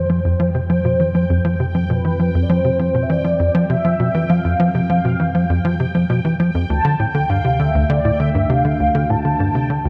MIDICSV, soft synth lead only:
0, 0, Header, 1, 2, 480
1, 0, Start_track
1, 0, Tempo, 600000
1, 1517, Time_signature, 4, 2, 24, 8
1, 7913, End_track
2, 0, Start_track
2, 0, Title_t, "Soft synth lead"
2, 0, Program_c, 0, 80
2, 0, Note_on_c, 0, 72, 102
2, 524, Note_off_c, 0, 72, 0
2, 558, Note_on_c, 0, 72, 84
2, 1246, Note_off_c, 0, 72, 0
2, 1517, Note_on_c, 0, 71, 87
2, 1942, Note_on_c, 0, 74, 64
2, 1954, Note_off_c, 0, 71, 0
2, 1998, Note_on_c, 0, 72, 92
2, 2010, Note_off_c, 0, 74, 0
2, 2420, Note_on_c, 0, 76, 72
2, 2432, Note_off_c, 0, 72, 0
2, 2478, Note_on_c, 0, 74, 105
2, 2490, Note_off_c, 0, 76, 0
2, 2951, Note_off_c, 0, 74, 0
2, 2956, Note_on_c, 0, 76, 110
2, 3437, Note_on_c, 0, 77, 118
2, 3449, Note_off_c, 0, 76, 0
2, 3914, Note_off_c, 0, 77, 0
2, 3918, Note_on_c, 0, 77, 99
2, 4606, Note_off_c, 0, 77, 0
2, 5356, Note_on_c, 0, 81, 107
2, 5595, Note_on_c, 0, 79, 100
2, 5607, Note_off_c, 0, 81, 0
2, 5837, Note_on_c, 0, 77, 98
2, 5849, Note_off_c, 0, 79, 0
2, 6079, Note_on_c, 0, 76, 92
2, 6091, Note_off_c, 0, 77, 0
2, 6312, Note_off_c, 0, 76, 0
2, 6317, Note_on_c, 0, 74, 99
2, 6558, Note_on_c, 0, 76, 96
2, 6570, Note_off_c, 0, 74, 0
2, 6799, Note_on_c, 0, 77, 103
2, 6811, Note_off_c, 0, 76, 0
2, 7278, Note_on_c, 0, 81, 108
2, 7290, Note_off_c, 0, 77, 0
2, 7913, Note_off_c, 0, 81, 0
2, 7913, End_track
0, 0, End_of_file